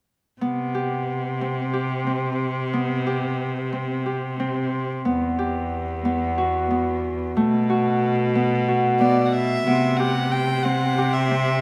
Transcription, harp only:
0.41 1.47 B3 medium
0.75 1.73 G4 soft
1.41 2.06 C4 medium
1.73 3.06 G4 soft
2.07 2.79 C4 medium
2.73 3.79 B3 medium
3.07 4.05 G4 soft
3.73 4.39 C4 medium
4.06 5.38 G4 soft
4.39 5.11 C4 medium
5.05 6.05 B3 medium
5.39 6.44 G4 soft
6.05 6.70 B3 medium
6.38 7.69 F#4 medium
6.71 8.35 B3 medium
7.37 10.69 A3 medium
7.70 8.68 F#4 medium
8.35 9.00 B3 medium
8.68 10.06 F#4 medium
9.01 9.66 B3 medium
9.67 10.71 B3 medium
10.00 10.98 G4 medium
10.65 11.31 C4 medium
10.98 11.61 G4 medium
11.31 11.61 C4 medium

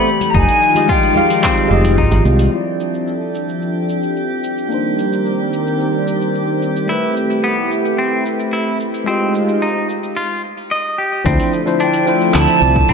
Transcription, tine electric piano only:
0.74 1.12 G#3 medium
0.74 1.13 F4 medium
0.74 1.13 G4 medium
0.74 1.14 D#5 medium
1.15 1.66 G#3 loud
1.15 1.67 F4 medium
1.15 1.68 G4 medium
1.15 1.68 F5 loud
1.68 2.49 G#3 medium
1.68 2.51 F4 medium
1.68 2.51 G4 medium
1.74 2.52 D#5 loud
2.50 4.66 C4 medium
2.50 4.67 E4 medium
2.54 4.68 F4 medium
2.54 4.69 D5 medium
4.69 6.85 A#3 medium
4.69 6.86 D4 medium
4.69 6.87 D#4 medium
4.74 6.88 C5 medium
6.86 9.03 A3 medium
6.86 9.05 G4 medium
6.92 9.06 B4 medium
9.04 10.15 G#3 medium
9.04 10.16 F4 medium
9.04 10.17 G4 medium
9.10 10.18 D#5 medium
11.24 11.61 F3 loud
11.24 11.61 D4 medium
11.24 11.62 E4 medium
11.24 11.62 C5 loud
11.65 12.03 F3 loud
11.65 12.04 D4 medium
11.65 12.04 E4 medium
11.65 12.05 C5 loud
12.06 12.58 F3 loud
12.06 12.58 D4 medium
12.06 12.59 E4 medium
12.06 12.59 C5 loud
12.60 12.93 F3 medium
12.60 12.93 D4 medium
12.60 12.93 E4 medium
12.60 12.93 D5 loud

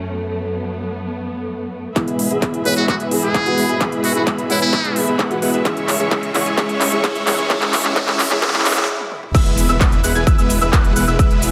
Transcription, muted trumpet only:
2.65 2.75 B4 medium
2.77 2.84 F#4 medium
2.89 2.96 F#4 medium
3.23 3.88 G#4 medium
4.04 4.11 F#4 medium
4.16 4.23 F#4 medium
4.50 4.59 E4 medium
4.62 5.08 E4 medium

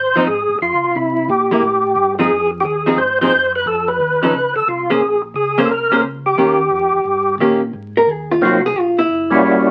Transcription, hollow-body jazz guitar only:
0.16 0.26 F3 medium
0.16 0.27 C4 medium
0.16 0.27 D#4 medium
1.51 1.62 G#3 medium
1.51 1.62 A#3 medium
1.51 1.62 E4 medium
2.19 2.30 F3 medium
2.19 2.30 C4 medium
2.19 2.30 D#4 medium
2.19 2.30 G#4 medium
2.86 2.97 F3 medium
2.86 2.97 C4 medium
2.86 2.98 D#4 medium
2.86 2.98 G#4 medium
3.21 3.32 F3 medium
3.21 3.32 C4 medium
3.21 3.32 D#4 medium
3.21 3.32 G#4 medium
4.23 4.33 F3 medium
4.23 4.33 C#4 medium
4.23 4.34 D#4 medium
4.23 4.34 A4 medium
4.90 5.01 A#3 medium
4.90 5.01 C#4 medium
4.90 5.01 G#4 medium
4.90 5.01 C5 medium
5.58 5.69 A#3 medium
5.58 5.69 C#4 medium
5.58 5.69 G#4 medium
5.58 5.69 C5 medium
5.92 6.02 A#3 medium
5.92 6.03 C#4 medium
5.92 6.03 G#4 medium
5.92 6.03 C5 medium
6.38 6.58 D#3 medium
6.38 6.58 A#3 medium
6.38 6.58 C#4 medium
6.38 6.58 G4 medium
7.40 7.60 D#3 soft
7.40 7.60 A#3 medium
7.40 7.60 C#4 medium
7.40 7.60 G4 medium
7.97 8.11 A#4 medium
8.11 8.30 G#4 medium
8.31 8.42 F4 medium
8.45 8.64 F#4 medium
8.66 8.79 G#4 medium
8.79 8.99 F4 medium
8.99 9.40 E4 medium

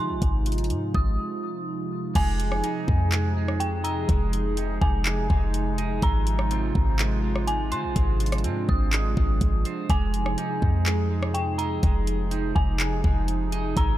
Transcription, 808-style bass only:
0.00 0.11 D#3 loud
0.10 0.21 G#1 loud
0.22 0.72 G#1 loud
0.70 0.93 G#2 loud
0.95 1.18 G#1 loud
2.15 2.62 F1 loud
2.88 4.05 F2 loud
4.09 4.79 F1 loud
4.82 5.28 F1 loud
5.30 6.00 F1 loud
6.02 6.72 G#1 loud
6.75 7.73 G#1 loud
7.72 7.85 D#3 loud
7.84 7.95 G#1 loud
7.96 8.46 G#1 loud
8.44 8.67 G#2 loud
8.69 9.15 G#1 loud
9.17 9.40 G#1 loud
9.41 9.64 G#1 loud
9.90 10.36 F1 loud
10.62 11.79 F2 loud
11.83 12.53 F1 loud
12.56 13.02 F1 loud
13.04 13.74 F1 loud
13.77 13.98 G#1 loud

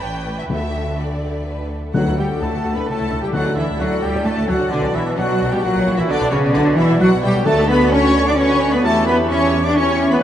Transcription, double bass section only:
0.01 0.49 A1 medium
0.50 1.72 D2 medium
1.94 1.99 D2 medium
2.07 2.11 D2 medium
2.17 2.22 D2 medium
2.29 2.34 D2 medium
2.41 2.46 D2 medium
2.53 2.57 D2 medium
2.64 2.69 D2 medium
2.76 2.81 D2 medium
2.88 2.93 C#2 medium
2.99 3.04 C#2 medium
3.11 3.15 C#2 medium
3.22 3.27 C#2 medium
3.34 3.38 D2 medium
3.45 3.49 D2 medium
3.55 3.60 D2 medium
3.68 3.73 D2 medium
3.79 3.84 D2 medium
3.91 3.96 D2 medium
4.02 4.07 D2 medium
4.14 4.19 D2 medium
4.25 4.30 D2 medium
4.37 4.42 D2 medium
4.49 4.53 D2 medium
4.60 4.65 D2 medium
4.72 4.77 B1 loud
4.83 4.88 B1 medium
4.94 4.99 B1 medium
5.05 5.10 B1 medium
5.17 5.22 B1 medium
5.29 5.33 B1 medium
5.41 5.45 B1 medium
5.53 5.57 B1 medium
5.63 5.68 A#1 medium
5.75 5.80 A#1 loud
5.86 5.91 A#1 medium
5.98 6.02 A#1 medium
6.10 6.14 B1 loud
6.21 6.25 B1 medium
6.32 6.37 B1 medium
6.43 6.48 B1 loud
6.56 6.60 B1 medium
6.67 6.71 B1 medium
6.78 6.83 B1 loud
6.90 6.94 B1 medium
7.02 7.06 B1 medium
7.13 7.17 B1 loud
7.24 7.29 B1 medium
7.36 7.40 B1 medium
7.48 8.81 D2 medium
8.84 10.21 E2 medium

